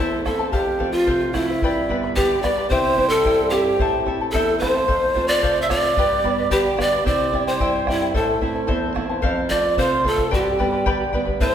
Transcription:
Already playing: nylon-string guitar A3 C4 E4, charango E4 A4 E5
0.00 nylon-string guitar E2, pan flute E4, charango C5 A5, quena E5
0.25 nylon-string guitar A3 C4 E4, charango E4 C5 E5 A5, pan flute A4, quena A5, bombo rim, bombo low
0.39 charango E4 C5 A5
0.52 nylon-string guitar F2, pan flute G4, charango A4 C5 F5, quena G5, bombo low
0.79 nylon-string guitar F3 A3 C4, charango A4 C5 F5, bombo low
0.92 pan flute F4, charango C5 F5, quena F5
1.06 nylon-string guitar C3, charango A4 C5 F5, bombo low
1.33 nylon-string guitar F3 A3 C4, pan flute E4, charango A4 C5 F5, quena E5, bombo rim, bombo low
1.49 charango C5 F5
1.62 nylon-string guitar G2, charango G4 B4 D5 G5 B5, bombo low
1.89 nylon-string guitar D3 G3 B3, charango B4 D5 G5 B5, bombo low
2.03 charango B4 D5 B5
2.16 nylon-string guitar D3, pan flute G4, charango G4 B4 D5 G5 B5, quena G5, bombo low
2.42 nylon-string guitar D3 G3 B3, charango B4 D5 G5 B5, pan flute D5, quena D6, bombo rim, bombo low
2.58 charango B4 D5 B5
2.70 nylon-string guitar C3, charango E4 G4 C5 E5 G5, pan flute C5, quena C6, bombo low
2.97 nylon-string guitar G3 C4 E4, charango E4 C5 E5 G5, bombo low
3.09 pan flute A4, charango C5 G5, quena A5
3.14 charango E4
3.24 nylon-string guitar G2, charango E4 G4 C5 E5 G5, bombo low
3.50 nylon-string guitar G3 C4 E4, charango E4 C5 E5 G5, pan flute G4, quena G5, bombo rim
3.66 charango E4 C5 G5
3.79 nylon-string guitar A2, charango E4 A4 C5 E5 A5, bombo low
4.05 nylon-string guitar A3 C4 E4, charango E4 A4 E5 A5, bombo low
4.21 charango E4 A4 A5
4.31 nylon-string guitar E2, charango E4 A4 C5 E5 A5, pan flute A4, quena A5, bombo low
4.59 nylon-string guitar A3 C4 E4, charango E4 A4 E5 A5, pan flute C5, quena C6, bombo rim, bombo low
4.75 charango E4 A4 A5
4.88 nylon-string guitar F2, charango A4 C5 F5, bombo low
5.14 nylon-string guitar A3 C4 F4, charango A4 C5 F5, bombo low
5.28 charango C5 F5, pan flute D5, quena D6
5.42 nylon-string guitar C3, charango A4 C5 F5, bombo low
5.62 pan flute E5, quena E6
5.69 nylon-string guitar A3 C4 F4, charango A4 C5 F5, pan flute D5, quena D6, bombo rim, bombo low
5.83 charango C5 F5
5.97 nylon-string guitar G2, charango G4 B4 D5 G5 B5, bombo low
6.24 nylon-string guitar G3 B3 D4, charango B4 D5 G5 B5, bombo low
6.38 charango B4 D5 B5
6.50 nylon-string guitar D3, pan flute G4, charango G4 B4 D5 G5 B5, quena G5, bombo low
6.77 nylon-string guitar G3 B3 D4, charango B4 D5 G5 B5, pan flute D5, quena D6, bombo rim, bombo low
6.92 charango B4 D5 B5
7.05 nylon-string guitar C3, charango E4 G4 C5 E5 G5, pan flute D5, quena D6, bombo low
7.32 nylon-string guitar G3 C4 E4, charango E4 C5 E5 G5, bombo low
7.47 charango E4 C5 G5, pan flute C5, quena C6
7.60 nylon-string guitar G2, charango E4 G4 C5 E5 G5, bombo low
7.87 nylon-string guitar G3 C4 E4, charango E4 C5 E5 G5, pan flute E4, quena E5, bombo rim, bombo low
8.02 charango E4 C5 G5
8.14 nylon-string guitar A2, charango E4 A4 C5 E5 A5, pan flute A4, quena A5, bombo low
8.41 nylon-string guitar A3 C4 E4, charango E4 C5 E5 A5, bombo low
8.55 charango E4 C5 A5
8.67 nylon-string guitar E2, charango E4 A4 C5 E5 A5, bombo low
8.94 nylon-string guitar A3 C4 E4, charango E4 C5 E5 A5, bombo rim, bombo low
9.09 charango E4 C5 A5
9.22 nylon-string guitar F2, charango A4 C5 F5, bombo low
9.50 nylon-string guitar A3 C4 F4, charango A4 C5 F5, pan flute D5, quena D6, bombo low
9.64 charango C5 F5
9.77 nylon-string guitar C3, charango A4 C5 F5, pan flute C5, quena C6, bombo low
10.04 nylon-string guitar A3 C4 F4, charango A4 C5 F5, pan flute A4, bombo low
10.09 quena A5
10.17 charango C5 F5, bombo low
10.31 nylon-string guitar G2, charango G4 B4 D5 G5 B5, pan flute G4, bombo low
10.36 quena G5
10.59 nylon-string guitar G3 B3 D4, charango B4 D5 G5 B5, bombo low
10.72 charango B4 D5 B5
10.86 nylon-string guitar D3, charango G4 B4 D5 G5 B5, bombo low
11.13 nylon-string guitar G3 B3 D4, charango B4 D5 G5 B5, bombo low
11.25 charango B4 D5 B5, bombo low
11.40 nylon-string guitar A2, charango E4 A4 C5 E5 A5, pan flute C5, quena C6, bombo low

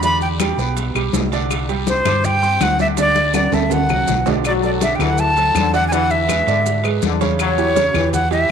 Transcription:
Already playing: fingered electric bass E2
0.03 grand piano D3 D4 D5, flute B5, high bongo, high conga, high timbale, long guiro, maracas
0.21 flute G5, high bongo, high conga, maracas
0.40 grand piano G3 G4 G5, flute G5, high bongo, high conga, high timbale, low timbale, short guiro, claves, maracas
0.58 fingered electric bass B1, grand piano B3 B4 B5, high bongo, high conga, short guiro, maracas
0.77 high bongo, high conga, high timbale, long guiro, maracas
0.95 fingered electric bass B1, grand piano G3 G4 G5, high bongo, high conga, high timbale, claves, maracas
1.13 fingered electric bass C2, high bongo, low bongo, high conga, low timbale, short guiro, maracas
1.32 grand piano D3 D4 D5, high conga, high timbale, short guiro, maracas
1.50 high bongo, high conga, high timbale, long guiro, claves, maracas
1.69 grand piano G3 G4 G5, high bongo, high conga, high timbale, maracas
1.87 flute C5, high bongo, high conga, low timbale, short guiro, maracas
2.05 fingered electric bass G2, grand piano D4 D5 D6, high bongo, high conga, low conga, high timbale, short guiro, claves, maracas
2.24 flute G5, high bongo, high conga, low conga, long guiro, maracas
2.42 grand piano C4 C5 C6, high bongo, high conga, maracas
2.61 fingered electric bass D2, flute F#5, high bongo, low bongo, high conga, high timbale, low timbale, short guiro, claves, maracas
2.79 grand piano D3 D4 D5, flute E5, high conga, short guiro, maracas
2.97 grand piano D3 D4 D5, flute D5, high bongo, high conga, high timbale, long guiro, maracas
3.15 high bongo, high conga, maracas
3.34 grand piano F#3 F#4 F#5, flute D5, high bongo, high conga, high timbale, short guiro, claves, maracas
3.52 fingered electric bass D2, grand piano A3 A4 A5, flute E5, high bongo, high conga, high timbale, short guiro, maracas
3.70 flute F#5, high bongo, low conga, high timbale, long guiro, maracas
3.89 fingered electric bass C2, grand piano F#3 F#4 F#5, high bongo, low conga, claves, maracas
4.07 fingered electric bass B1, high bongo, low bongo, low conga, low timbale, short guiro, maracas
4.26 grand piano D3 D4 D5, low conga, low timbale, short guiro, maracas
4.44 trombone section F#3, flute D5, high bongo, high conga, high timbale, long guiro, claves, maracas
4.63 grand piano F#3 F#4 A4, flute D5, high bongo, high conga, maracas
4.81 grand piano D3 D4 D5, flute E5, high bongo, high conga, high timbale, short guiro, maracas
4.95 fingered electric bass D2, flute G5
5.00 trombone section E3, grand piano F#3 F#4 A4, flute F#5, high bongo, high conga, low conga, high timbale, short guiro, claves, maracas
5.18 flute A5, high bongo, high conga, long guiro, maracas
5.37 grand piano F#3 F#4 A4, high conga, high timbale, maracas
5.55 fingered electric bass E2, trombone section D3, high bongo, low bongo, high conga, high timbale, short guiro, claves, maracas
5.73 grand piano D3 D4 D5, flute F#5, high bongo, short guiro, maracas
5.88 grand piano D3 D4, trombone section E3, flute G#5, high conga, long guiro
5.92 grand piano D5, flute F#5, high bongo, high timbale, maracas
6.10 flute E5, high bongo, high conga, maracas
6.28 grand piano G#3 G#4 B4, high bongo, high conga, high timbale, short guiro, claves, maracas
6.47 fingered electric bass G#2, grand piano D3 D4 D5, trombone section D3, high bongo, high conga, high timbale, short guiro, maracas
6.66 high bongo, high conga, long guiro, maracas
6.84 grand piano G#3 G#4 B4, high conga, high timbale, claves, maracas
7.02 fingered electric bass E2, trombone section D3, high bongo, low bongo, high conga, short guiro, maracas
7.21 grand piano C#3 C#4 C#5, high bongo, high conga, high timbale, short guiro, maracas
7.39 trombone section F#3, flute C#5, high bongo, high timbale, long guiro, claves, maracas
7.58 grand piano E3 E4 G4, high bongo, high conga, maracas
7.75 grand piano C#3 C#4 C#5, high bongo, high conga, high timbale, short guiro, maracas
7.94 fingered electric bass E2, grand piano E3 E4 G4, trombone section E3, high bongo, high conga, low conga, high timbale, short guiro, claves, maracas
8.13 flute F#5, high bongo, high conga, low conga, long guiro, maracas
8.31 grand piano E3 E4 G4, flute E5, high conga, high timbale, maracas

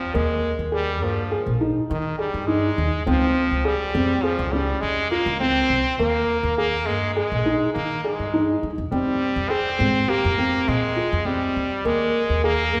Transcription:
Already playing: french horn F3
0.14 upright bass D#2, french horn G#3, felt piano A#3
0.59 upright bass D#2
0.72 french horn G3, felt piano G#4
1.02 upright bass G2, french horn F3, felt piano A#3
1.32 felt piano G#4
1.47 upright bass A#1
1.61 felt piano D#4
1.90 french horn D#3, upright bass D#3
2.19 french horn G3, felt piano G#4
2.34 upright bass G2
2.47 french horn G#3, felt piano D#4
2.78 upright bass D#2
3.06 upright bass C#2, french horn F3, felt piano C4
3.51 upright bass C#2
3.65 french horn G3, felt piano G#4
3.95 upright bass F2, felt piano C4
4.23 french horn F3, felt piano G#4
4.39 upright bass C#2
4.52 french horn G3, felt piano C#4
4.81 upright bass F2, french horn G#3
5.11 french horn A#3, felt piano F4
5.26 upright bass C#2
5.40 french horn C4, felt piano C4
5.70 upright bass C2
5.99 upright bass D#2, french horn A#3, felt piano A#3
6.43 upright bass D#2
6.58 french horn A#3, felt piano G#4
6.86 upright bass G2, french horn G#3, felt piano A#3
7.15 french horn G#3, felt piano G#4
7.32 upright bass A#1
7.46 felt piano D#4
7.74 upright bass D#3, french horn A#3
8.04 french horn G#3, felt piano G#4
8.19 upright bass G2
8.34 felt piano D#4
8.63 upright bass G2
8.78 upright bass F2
8.91 upright bass F2, french horn G3, felt piano C4
9.36 upright bass F2
9.50 french horn C4, felt piano G#4
9.79 upright bass G#2, felt piano C4
10.08 french horn A#3, felt piano G4
10.25 upright bass F2
10.38 felt piano C4
10.68 upright bass A#2, french horn G#3
10.96 felt piano F4
11.13 upright bass F2
11.25 french horn G3, felt piano C4
11.56 upright bass D#2
11.85 upright bass D#2, french horn G#3, felt piano A#3
12.30 upright bass D#2
12.44 french horn A#3, felt piano G#4
12.73 upright bass G2, felt piano A#3

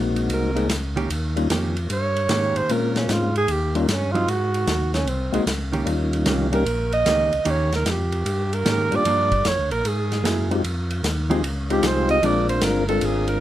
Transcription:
Already playing: tonewheel organ A#1 G#3 A#3 C4 D#4 F#4
0.16 ride
0.20 alto saxophone F#4
0.29 tonewheel organ C2, ride
0.34 alto saxophone A#4
0.55 tonewheel organ G#3 A#3 C4 D#4 G#4, ride
0.69 tonewheel organ C#2, snare, hi-hat pedal, ride
0.96 hollow-body jazz guitar D#3 A#3 C#4 G4, ride
1.10 tonewheel organ D#2, ride
1.36 tonewheel organ G3 A#3 C#4 D#4 F4, ride
1.50 tonewheel organ F2, hollow-body jazz guitar D#3 A#3 C#4 G4, snare, hi-hat pedal, ride
1.77 ride
1.90 tonewheel organ G2, alto saxophone C#5, ride
2.16 ride
2.29 tonewheel organ G#2, hollow-body jazz guitar D#3 A#3 C#4 G4, snare, hi-hat pedal, ride
2.55 tonewheel organ G#2, alto saxophone C5, ride
2.69 tonewheel organ A#2 G#3 A#3 C4 C#4 F4, alto saxophone A#4, ride
2.96 alto saxophone C#4, snare, ride
3.08 tonewheel organ G#2, alto saxophone F4, snare, hi-hat pedal, ride
3.36 alto saxophone G#4, ride
3.48 tonewheel organ D#2, alto saxophone G4, ride
3.75 tonewheel organ G3 A#3 C#4 D#4 F4, alto saxophone A#3, ride
3.88 tonewheel organ G2, alto saxophone C#4, snare, hi-hat pedal, ride
4.12 hollow-body jazz guitar F#3 C4 D#4, alto saxophone F4, ride
4.27 tonewheel organ G#2, alto saxophone F#4, ride
4.54 ride
4.66 tonewheel organ D#2, snare, hi-hat pedal, ride
4.94 alto saxophone C#4, snare, ride
5.05 tonewheel organ C2, alto saxophone C4, ride
5.32 tonewheel organ C2 G#3 A#3 C4 D#4 F#4, alto saxophone G#3, ride
5.46 tonewheel organ C#2, snare, hi-hat pedal, ride
5.73 hollow-body jazz guitar D#3 A#3 C#4 G4, ride
5.85 tonewheel organ D#2 G3 A#3 C#4 D#4 F4, ride
6.13 ride
6.26 tonewheel organ C2, hollow-body jazz guitar D#3 A#3 C#4 G4, snare, hi-hat pedal, ride
6.52 tonewheel organ G3 A#3 C#4 D#4 G4, alto saxophone A#4, ride
6.66 tonewheel organ A#1, ride
6.92 alto saxophone D#5, ride
7.05 tonewheel organ C#2, hollow-body jazz guitar D#3 A#3 C#4 G4, snare, hi-hat pedal, ride
7.33 tonewheel organ C#2, ride
7.45 tonewheel organ D#2, hollow-body jazz guitar D#3 A#3 C#4 G4, ride
7.50 alto saxophone C#5
7.72 alto saxophone A#4, snare, ride
7.85 tonewheel organ F2, snare, hi-hat pedal, ride
7.90 alto saxophone G4
8.12 ride
8.25 tonewheel organ G2, ride
8.53 alto saxophone A#4, ride
8.65 tonewheel organ G#2, hollow-body jazz guitar D#3 A#3 C#4 G4, snare, hi-hat pedal, ride
8.91 tonewheel organ G#2 G3 A#3 D4 F4 G4, ride
8.96 alto saxophone D5
9.05 tonewheel organ G2, hollow-body jazz guitar F3 A#3 D4, ride
9.32 kick, ride
9.45 tonewheel organ F2, alto saxophone C#5, snare, hi-hat pedal, ride
9.58 tonewheel organ D2
9.71 tonewheel organ A#1, alto saxophone A#4, ride
9.85 tonewheel organ G#2, alto saxophone G#4, ride
10.12 snare, ride
10.24 tonewheel organ F#2, hollow-body jazz guitar A#3 E4 G#4, snare, hi-hat pedal, ride
10.51 tonewheel organ G#3 C4 D#4 F4 G4, ride
10.64 tonewheel organ F2, ride
10.91 ride
11.03 tonewheel organ D#2, snare, hi-hat pedal, ride
11.30 hollow-body jazz guitar F3 C4 D#4 G#4, tonewheel organ G#3 C4 D#4 F4 G4, ride
11.42 tonewheel organ C#2, ride
11.70 tonewheel organ G#3 C4 D#4 F4 G4, alto saxophone G4, ride
11.82 tonewheel organ C2, hollow-body jazz guitar F3 C4 D#4 G#4, snare, hi-hat pedal, ride
11.87 alto saxophone C5
12.09 alto saxophone D#5, ride
12.22 tonewheel organ A#1 G#3 C4 D4 F4 A#4, hollow-body jazz guitar F3 G#3 D4, alto saxophone D5, ride
12.49 alto saxophone C5, ride
12.61 tonewheel organ G1, alto saxophone A#4, snare, hi-hat pedal, ride
12.88 tonewheel organ G#3 C4 D4 F4 A#4, alto saxophone A4, ride
13.01 tonewheel organ G#1, alto saxophone G#4, ride
13.28 alto saxophone A#4, ride

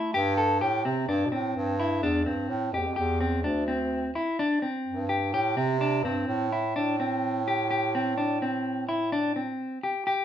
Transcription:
Already playing: bass clarinet A3, clean electric guitar E4
0.14 bass clarinet G2, clean electric guitar G4
0.38 clean electric guitar A4
0.61 bass clarinet A2, clean electric guitar G4
0.85 bass clarinet C3, clean electric guitar C4
1.08 bass clarinet G2, clean electric guitar D4
1.26 bass clarinet B2
1.32 bass clarinet A2, clean electric guitar C4
1.56 bass clarinet G2
1.80 clean electric guitar E4
2.03 bass clarinet E2, clean electric guitar D4
2.26 bass clarinet G2, clean electric guitar C4
2.49 bass clarinet A2
2.73 bass clarinet F2, clean electric guitar G4
2.79 bass clarinet E2
2.86 bass clarinet F2
2.96 bass clarinet E2, clean electric guitar G4
3.21 clean electric guitar C4
3.44 bass clarinet D2, clean electric guitar D4
3.68 clean electric guitar C4
4.15 clean electric guitar E4
4.39 clean electric guitar D4
4.62 clean electric guitar C4
4.86 bass clarinet G2
5.09 clean electric guitar G4
5.33 bass clarinet A2, clean electric guitar G4
5.57 bass clarinet C3, clean electric guitar C4
5.81 clean electric guitar D4
6.04 bass clarinet G2, clean electric guitar C4
6.27 bass clarinet A2
6.52 clean electric guitar E4
6.76 bass clarinet A2, clean electric guitar D4
7.00 clean electric guitar C4
7.48 clean electric guitar G4
7.71 clean electric guitar G4
7.95 clean electric guitar C4
8.18 clean electric guitar D4
8.42 clean electric guitar C4
8.89 clean electric guitar E4
9.12 clean electric guitar D4
9.36 clean electric guitar C4
9.83 clean electric guitar G4
10.07 clean electric guitar G4

